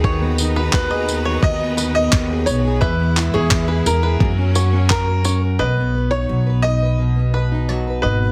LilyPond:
<<
  \new Staff \with { instrumentName = "Five-string banjo" } { \time 4/4 \key b \major \tempo 4 = 86 cis''8 r16 b'16 r16 dis''16 r16 cis''16 dis''8 b'16 r4 r16 | e''8 r16 cis''16 r16 b'16 r16 b'16 r8 cis''8 ais'16 r16 cis''16 r16 | dis''8 r16 cis''8 r16 dis''16 r8. b'8 cis''16 r16 dis''16 r16 | }
  \new Staff \with { instrumentName = "Upright piano" } { \time 4/4 \key b \major r4 b'4 dis''8. dis''8. cis''8 | b'8. gis'8. ais'4. ais'4 | b'8. cis''8. dis''2 b'8 | }
  \new Staff \with { instrumentName = "Steel-string acoustic guitar" } { \time 4/4 \key b \major <dis gis'>16 b16 dis'16 b16 dis'16 gis'16 b16 gis'16 dis16 b16 dis'16 b16 dis'16 gis'16 b16 gis'16 | e16 b16 e'16 b16 e'16 gis'16 b16 gis'16 fis16 cis'16 fis'16 cis'16 fis'16 ais'16 cis'16 ais'16 | b,16 b16 b'16 dis'16 fis16 b'8 b'16 b,16 b16 b'16 dis'16 fis16 b'16 dis'16 b'16 | }
  \new Staff \with { instrumentName = "String section" } { \time 4/4 \key b \major <dis dis' fis' b' ais''>1 | <gis b e'>2 <fis ais cis'>2 | r1 | }
  \new Staff \with { instrumentName = "Upright bass" } { \clef bass \time 4/4 \key b \major dis,4 dis,4 dis,4 dis,8 b,,8 | e,8. e,8. e,8 fis,2 | b,,4 b,,2~ b,,8 gis,,8 | }
  \new DrumStaff \with { instrumentName = "Drums" } \drummode { \time 4/4 bd8 tamb8 <hc bd>8 tamb8 bd8 tamb8 <hc bd>8 tamb8 | bd8 <hc tamb>8 <hc bd>8 tamb8 bd8 tamb8 <hc bd>8 tamb8 | r4 r4 r4 r4 | }
>>